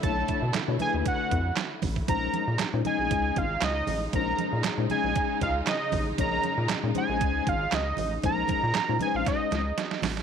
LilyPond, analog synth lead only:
\new Staff \with { instrumentName = "Analog synth lead" } { \time 4/4 \key bes \minor \tempo 4 = 117 a''4 r8 aes''8 fis''4 r4 | bes''4 r8 aes''4 f''8 ees''8. r16 | bes''4 r8 aes''4 f''8 ees''8. r16 | bes''4 r8 aes''4 f''8 ees''8. r16 |
bes''4. aes''16 f''16 ees''4. r8 | }